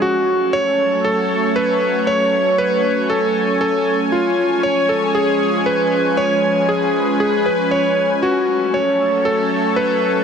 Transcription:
0.02 F#3 A3 C#4 F#4 A4 C#5
0.53 C#5
1.04 A4
1.56 B4
2.07 C#5 G#5
2.58 B4
3.10 A4
3.61 A4
4.12 F3 G#3 F4 C#5
4.63 C#5
4.89 A4
5.15 G#4
5.66 B4
6.17 B4 C#5
6.69 G#4
7.20 G#4
7.46 B4
7.71 C#5
8.23 F#3 A3 F#4 A4 C#5
8.74 C#5
9.25 A4
9.76 B4

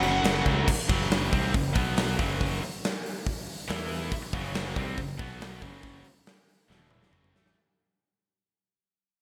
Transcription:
Already playing: F#5
0.01 F#1 F#2 C#3 F#3, crash
0.23 F#1 F#2 C#3 F#3, snare, crash
0.45 C#2 F#2 C#3 F#3, kick, crash
0.68 kick, crash
0.89 F#1 F#2 C#3 F#3, kick, open hi-hat
1.02 snare
1.11 snare, open hi-hat
1.31 C2 C3 G3 C4, kick, open hi-hat
1.53 F#1 F#2 C#3, kick, open hi-hat
1.73 B1 B2 F#3 B3, kick, open hi-hat
1.97 snare, open hi-hat
2.17 F#1 F#2 C#3 F#3, kick, open hi-hat
2.41 kick, open hi-hat
2.63 open hi-hat
2.84 snare, open hi-hat
3.06 open hi-hat
3.27 kick, open hi-hat
3.49 open hi-hat
3.68 E2 E3 B3 E4, snare, open hi-hat
3.91 open hi-hat
4.12 kick, open hi-hat
4.33 F#1 F#2 C#3 F#3, kick
4.54 snare, open hi-hat
4.76 C2 C3 G3 C4, kick, open hi-hat
4.97 F#1 F#2 C#3, kick, open hi-hat
5.18 B1 B2 F#3 B3, kick, open hi-hat
5.41 snare, open hi-hat
5.61 F#1 F#2 C#3 F#3, kick, open hi-hat
5.83 kick, open hi-hat
6.04 open hi-hat
6.26 snare, open hi-hat
6.48 open hi-hat
6.68 E1 E2 B2 E3, snare
6.80 high tom
6.91 mid tom
7.03 snare
7.11 F#1 F#2 C#3 F#3, mid tom
7.24 mid tom
7.32 A1 A2 E3 A3
7.36 snare
7.46 snare

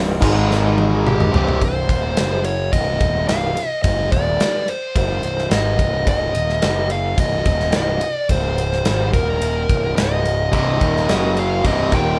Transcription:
Already playing: C1 C2 G2 C4 F4 D5
0.21 G#1 G#2 D#3 G#3 D#4 A#4, kick, crash
0.51 snare
0.78 high tom
1.07 G4, mid tom
1.20 mid tom
1.32 C1 C2 G2 C3 C4 G4 D5, floor tom
1.48 floor tom
1.62 C1 C5, kick, ride
1.89 D#1, kick, ride
2.17 F#1, snare, ride
2.44 C#5, ride
2.73 C1 D#5, kick, ride
3.01 D#1, kick, ride
3.28 C1 F5, snare, ride
3.57 ride
3.83 F#1 D#5, kick, ride
4.12 D#1 D5, kick, ride
4.40 snare, ride
4.68 C5, ride
4.96 F#1 C5, kick, ride
5.23 C1, ride
5.38 snare
5.51 G#1 D#5, snare, ride
5.79 C1, kick, ride
6.06 C1 D#5, kick, ride
6.35 D#1, ride
6.49 snare
6.62 F#1, snare, ride
6.90 F5, ride
7.18 C1 D#5, kick, ride
7.46 D#1, kick, ride
7.60 snare
7.72 C1 D#5, snare, ride
8.01 ride
8.13 D5
8.29 C#1 C5, kick, ride
8.58 ride
8.72 snare
8.85 G#1, snare, ride
9.14 D#1 A#4, kick, ride
9.42 ride
9.69 C1, kick, ride
9.96 C#1 D#5, snare, ride
10.25 ride
10.52 C1 C2 G2 C3 D#5, kick, ride
10.80 D#1 D#2 A#2 D#3, kick, ride
10.96 snare
11.08 F#1 F#2 C#3 F#3, snare, ride
11.37 F5, ride
11.63 C1 C2 G2 C3 D#5, kick, ride
11.91 D#1 D#2 A#2 D#3 G5, kick, ride

